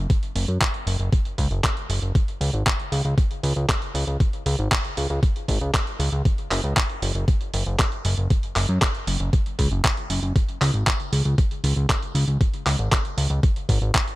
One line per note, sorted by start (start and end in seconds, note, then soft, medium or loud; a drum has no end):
0.10 kick loud
0.10 closed hi-hat medium
0.23 closed hi-hat soft
0.35 0.46 F#1 medium
0.35 open hi-hat loud
0.48 0.58 F#2 medium
0.48 closed hi-hat soft
0.61 kick loud
0.61 clap loud
0.61 closed hi-hat medium
0.74 closed hi-hat soft
0.87 0.97 F#1 medium
0.87 open hi-hat loud
0.99 1.10 F#1 medium
0.99 closed hi-hat soft
1.13 kick loud
1.13 closed hi-hat medium
1.25 closed hi-hat soft
1.38 1.48 C#2 loud
1.38 kick medium
1.38 open hi-hat loud
1.51 1.61 F#1 medium
1.51 closed hi-hat soft
1.64 kick loud
1.64 clap loud
1.64 closed hi-hat medium
1.77 closed hi-hat soft
1.90 2.00 F#1 medium
1.90 open hi-hat loud
2.02 2.12 F#1 medium
2.02 closed hi-hat soft
2.15 kick loud
2.15 closed hi-hat medium
2.28 closed hi-hat soft
2.41 2.51 C#2 medium
2.41 open hi-hat loud
2.53 2.64 G#1 medium
2.53 closed hi-hat soft
2.66 kick loud
2.66 clap loud
2.66 closed hi-hat medium
2.80 closed hi-hat soft
2.92 3.02 C#2 medium
2.92 open hi-hat loud
3.05 3.15 C#2 medium
3.05 closed hi-hat soft
3.18 kick loud
3.18 closed hi-hat medium
3.31 closed hi-hat soft
3.43 3.53 C#2 loud
3.43 open hi-hat loud
3.56 3.66 C#2 medium
3.56 closed hi-hat soft
3.69 kick loud
3.69 clap loud
3.69 closed hi-hat medium
3.82 closed hi-hat soft
3.95 4.05 C#2 medium
3.95 open hi-hat loud
4.07 4.17 C#2 medium
4.07 closed hi-hat soft
4.20 kick loud
4.20 closed hi-hat medium
4.33 closed hi-hat soft
4.46 4.56 C#2 loud
4.46 open hi-hat loud
4.59 4.69 G#1 medium
4.59 closed hi-hat soft
4.72 kick loud
4.72 clap loud
4.72 closed hi-hat medium
4.85 closed hi-hat soft
4.97 5.07 C#2 medium
4.97 open hi-hat loud
5.10 5.20 C#2 medium
5.10 closed hi-hat soft
5.23 kick loud
5.23 closed hi-hat medium
5.36 closed hi-hat soft
5.48 5.58 G#1 loud
5.48 kick medium
5.48 open hi-hat loud
5.61 5.71 C#2 medium
5.61 closed hi-hat soft
5.74 kick loud
5.74 clap loud
5.74 closed hi-hat medium
5.87 closed hi-hat soft
6.00 6.10 C#2 loud
6.00 open hi-hat loud
6.12 6.23 C#2 medium
6.12 closed hi-hat soft
6.25 kick loud
6.25 closed hi-hat medium
6.38 closed hi-hat soft
6.51 6.61 F#1 medium
6.51 clap medium
6.51 open hi-hat loud
6.64 6.74 C#2 medium
6.64 closed hi-hat soft
6.77 kick loud
6.77 clap loud
6.77 closed hi-hat medium
6.90 closed hi-hat soft
7.02 7.12 F#1 medium
7.02 open hi-hat loud
7.15 7.25 F#1 medium
7.15 closed hi-hat soft
7.28 kick loud
7.28 closed hi-hat medium
7.41 closed hi-hat soft
7.54 7.64 F#1 medium
7.54 open hi-hat loud
7.66 7.77 F#1 medium
7.66 closed hi-hat soft
7.79 kick loud
7.79 clap loud
7.79 closed hi-hat medium
7.92 closed hi-hat soft
8.05 8.15 F#1 medium
8.05 open hi-hat loud
8.18 8.28 F#1 medium
8.18 closed hi-hat soft
8.30 kick loud
8.30 closed hi-hat medium
8.43 closed hi-hat soft
8.56 8.66 F#1 medium
8.56 clap soft
8.56 open hi-hat loud
8.69 8.79 F#2 medium
8.69 closed hi-hat soft
8.82 kick loud
8.82 clap loud
8.82 closed hi-hat medium
8.95 closed hi-hat soft
9.07 9.17 F#1 medium
9.07 open hi-hat loud
9.20 9.30 F#1 medium
9.20 closed hi-hat soft
9.33 kick loud
9.33 closed hi-hat medium
9.46 closed hi-hat soft
9.59 9.69 C#2 medium
9.59 kick medium
9.59 open hi-hat loud
9.71 9.81 F#1 medium
9.71 closed hi-hat soft
9.84 kick loud
9.84 clap loud
9.84 closed hi-hat medium
9.97 closed hi-hat soft
10.10 10.20 F#1 loud
10.10 open hi-hat loud
10.23 10.33 F#1 medium
10.23 closed hi-hat soft
10.36 kick loud
10.36 closed hi-hat medium
10.49 closed hi-hat soft
10.61 10.71 C#2 loud
10.61 clap soft
10.61 open hi-hat loud
10.74 10.84 G#1 medium
10.74 closed hi-hat soft
10.87 kick loud
10.87 clap loud
10.87 closed hi-hat medium
11.00 closed hi-hat soft
11.12 11.23 C#2 medium
11.12 open hi-hat loud
11.25 11.35 C#2 medium
11.25 closed hi-hat soft
11.38 kick loud
11.38 closed hi-hat medium
11.51 closed hi-hat soft
11.64 11.74 C#2 loud
11.64 open hi-hat loud
11.76 11.87 C#2 medium
11.76 closed hi-hat soft
11.89 kick loud
11.89 clap loud
11.89 closed hi-hat medium
12.02 closed hi-hat soft
12.15 12.25 C#2 loud
12.15 open hi-hat loud
12.28 12.38 C#2 medium
12.28 closed hi-hat soft
12.41 kick loud
12.41 closed hi-hat medium
12.54 closed hi-hat soft
12.66 12.76 C#2 medium
12.66 clap medium
12.66 open hi-hat loud
12.79 12.89 G#1 medium
12.79 closed hi-hat soft
12.92 kick loud
12.92 clap loud
12.92 closed hi-hat medium
13.05 closed hi-hat soft
13.17 13.28 C#2 medium
13.17 open hi-hat loud
13.30 13.40 C#2 medium
13.30 closed hi-hat soft
13.43 kick loud
13.43 closed hi-hat medium
13.56 closed hi-hat soft
13.69 13.79 G#1 loud
13.69 kick medium
13.69 open hi-hat loud
13.82 13.92 G#1 medium
13.82 closed hi-hat soft
13.95 kick loud
13.95 clap loud
13.95 closed hi-hat medium
14.08 closed hi-hat soft